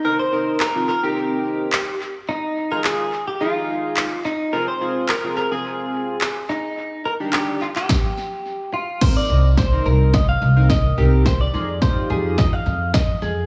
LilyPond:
<<
  \new Staff \with { instrumentName = "Clean electric guitar" } { \time 4/4 \key c \minor \tempo 4 = 107 bes'16 c''8. bes'8 bes'16 g'4.~ g'16 r8 | ees'8. bes'16 aes'8. g'16 f'4. ees'8 | bes'16 c''8. bes'8 bes'16 aes'4.~ aes'16 ees'8~ | ees'8 bes'8 g'8 f'16 g'4.~ g'16 f'8 |
c''16 d''8. c''8 bes'8 ees''16 f''8. ees''8 g'8 | c''16 d''8. c''8 aes'8 ees''16 f''8. ees''8 aes'8 | }
  \new Staff \with { instrumentName = "Analog polysynth" } { \time 4/4 \key c \minor <c' ees' bes'>16 r16 <c' ees' bes'>8 r16 <c' ees' f'>16 r16 <c' ees' bes'>4~ <c' ees' bes'>16 r4 | r8. <ees' f' aes'>8. r8 <ees' f' aes'>4~ <ees' f' aes'>16 r8. | <c' f' aes'>16 r16 <c' f' aes'>8 r16 <c' f' aes'>16 r16 <c' f' aes'>4~ <c' f' aes'>16 r4 | r8. <d' ees' g'>8. r2 r8 |
<c' ees' bes'>8. r8 <c' ees' bes'>8. r8. <c' ees' bes'>8 r16 <c' ees' bes'>8 | r8 <ees' f' aes'>16 r16 <ees' f' g'>4~ <ees' f' g'>16 r4. r16 | }
  \new Staff \with { instrumentName = "Upright bass" } { \clef bass \time 4/4 \key c \minor r1 | r1 | r1 | r1 |
r8 c,4 c,4 c,4 c,8~ | c,8 f,4 f,4 f,4 f,8 | }
  \new DrumStaff \with { instrumentName = "Drums" } \drummode { \time 4/4 r4 hc4 r4 hc4 | r4 hc4 r4 hc4 | r4 hc4 r4 hc4 | r4 hc8. hc16 <bd sn>4 r4 |
<cymc bd sn>4 <bd sn>4 <bd sn>4 <bd sn>4 | <bd sn>4 <bd sn>4 <bd sn>4 <bd sn>4 | }
>>